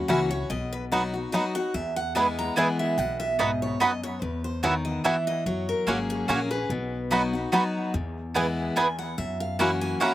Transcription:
0.08 upright bass C#2, steel-string acoustic guitar E3 A#3 C#4 F#4 F#5, five-string banjo C#4 E4 F#4
0.31 steel-string acoustic guitar C#4 F#4 C#5
0.50 upright bass B1, steel-string acoustic guitar B2 D#5
0.73 steel-string acoustic guitar B4
0.92 steel-string acoustic guitar F#3 B3 D#4 F#4, five-string banjo B3 D#4 F#4
1.14 steel-string acoustic guitar D#4 F#4
1.32 steel-string acoustic guitar F#3 B3 D#4 F#4 D#5, five-string banjo B3 D#4 F#4
1.55 steel-string acoustic guitar D#4 F#4 F#5
1.74 steel-string acoustic guitar E2 E5, upright bass E2
1.96 steel-string acoustic guitar F#5
2.15 steel-string acoustic guitar E3 G#3 B3 E4 G#5, mandolin B3 E4 B4 G#5, five-string banjo B3 E4 G#4
2.39 steel-string acoustic guitar A#5
2.56 steel-string acoustic guitar E3 G#3 B3 E4 G#5, mandolin B3 E4 B4 G#5, five-string banjo B3 E4 G#4
2.79 steel-string acoustic guitar E5
2.98 upright bass B1, steel-string acoustic guitar B2 F#5
3.20 steel-string acoustic guitar E5
3.39 steel-string acoustic guitar G#2 D#5, mandolin B3 F#4 D#5 B5, five-string banjo B3 D#4 F#4
3.62 steel-string acoustic guitar C#5
3.80 steel-string acoustic guitar F#2 D#5, mandolin B3 F#4 D#5 B5, five-string banjo B3 D#4 F#4
4.03 steel-string acoustic guitar C#5
4.21 steel-string acoustic guitar E2 B4, upright bass E2
4.44 steel-string acoustic guitar C5
4.63 steel-string acoustic guitar D#3 C#5, mandolin B3 F#4 E5 G#5, five-string banjo B3 E4 F#4
4.85 steel-string acoustic guitar D#5
5.04 steel-string acoustic guitar E3 E5, mandolin B3 F#4 E5 G#5, five-string banjo B3 E4 F#4
5.27 steel-string acoustic guitar D#5
5.46 upright bass F#2, steel-string acoustic guitar F#3 C#5
5.69 steel-string acoustic guitar A#4
5.87 upright bass G#1, steel-string acoustic guitar F#3 A#3 C#4 F#4 G#4, mandolin A#3 F#4 C#5 G#5, five-string banjo C#4 F#4
6.10 steel-string acoustic guitar G#4
6.28 upright bass A#1, steel-string acoustic guitar F#3 A#3 C#4 G#4 A#4, mandolin A#3 F#4 C#5 G#5, five-string banjo C#4 F#4
6.51 steel-string acoustic guitar C#4 G#4 B4
6.70 upright bass B1, steel-string acoustic guitar B2
7.11 steel-string acoustic guitar F#3 B3 D#4 F#4, mandolin B3 F#4 D#5 B5, five-string banjo B3 D#4 F#4
7.33 steel-string acoustic guitar D#4 F#4
7.52 steel-string acoustic guitar F#3 B3 D#4 F#4, mandolin B3 F#4 D#5 B5, five-string banjo B3 D#4 F#4
7.94 steel-string acoustic guitar E2, upright bass E2
8.34 steel-string acoustic guitar E3 G#3 B3 E4, mandolin B3 E4 B4 G#5, five-string banjo B3 E4 G#4
8.76 steel-string acoustic guitar E2 G#5, mandolin B3 E4 B4 G#5, five-string banjo B3 E4 G#4
8.99 steel-string acoustic guitar F#5
9.18 steel-string acoustic guitar F#2 E5, upright bass F#2
9.40 steel-string acoustic guitar F5
9.59 steel-string acoustic guitar E3 A#3 C#4 F#4 F#5, mandolin A#3 E4 C#5 F#5, five-string banjo C#4 E4 F#4
9.81 steel-string acoustic guitar G#5
10.00 steel-string acoustic guitar E3 A#3 C#4 F#4 A#5, mandolin A#3 E4 C#5 F#5, five-string banjo C#4 E4 F#4

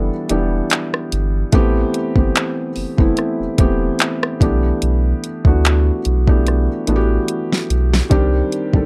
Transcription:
Already playing: sub bass F#1, felt piano E3 G3 B3 D4 E4 A4
0.29 sub bass E1, felt piano E3 G3 B3 D4 G4, closed hi-hat
0.70 clap, closed hi-hat
0.94 cross-stick
1.12 sub bass G1, closed hi-hat
1.52 sub bass A1, felt piano E3 A3 B3 C4 G4, kick, closed hi-hat
1.94 closed hi-hat
2.15 sub bass G1, felt piano E3 A3 B3 C4 G4, kick
2.35 clap, closed hi-hat
2.76 sub bass F#1, open hi-hat
2.97 sub bass F#1, felt piano E3 A3 B3 C4 E4, kick
3.17 cross-stick, closed hi-hat
3.40 sub bass E1
3.58 sub bass E1, felt piano E3 A3 B3 C4 G4, kick, closed hi-hat
3.99 clap, closed hi-hat
4.23 cross-stick
4.40 sub bass B1, felt piano E3 A3 B3 D4 G4, kick, closed hi-hat
4.82 sub bass B1, closed hi-hat
5.24 closed hi-hat
5.45 sub bass D2, felt piano E3 A3 B3 D4 F#4, kick
5.65 clap, closed hi-hat
6.05 sub bass B1, closed hi-hat
6.27 felt piano E3 A3 B3 D4 G4, kick
6.47 cross-stick, closed hi-hat
6.87 sub bass A1, felt piano E3 A3 B3 D4 F#4, closed hi-hat
6.96 felt piano G4
7.28 closed hi-hat
7.52 snare
7.70 sub bass B1, closed hi-hat
7.94 snare
8.10 sub bass C2, felt piano D#3 G3 C4 D4 G4, kick, closed hi-hat
8.52 closed hi-hat
8.73 sub bass B1, felt piano D#3 G3 C4 D4 A4, kick

